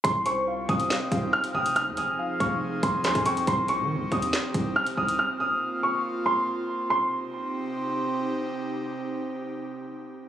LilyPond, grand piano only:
\new Staff \with { instrumentName = "Grand piano" } { \time 4/4 \key c \phrygian \tempo 4 = 140 c'''8 des'''4 ees'''4. f'''8 ees'''8 | f'''8 ees'''4 des'''8 r8 c'''8 c'''8 des'''8 | c'''8 des'''4 ees'''4. f'''8 ees'''8 | f'''8 ees'''4 des'''8 r8 c'''4. |
c'''2. r4 | r1 | }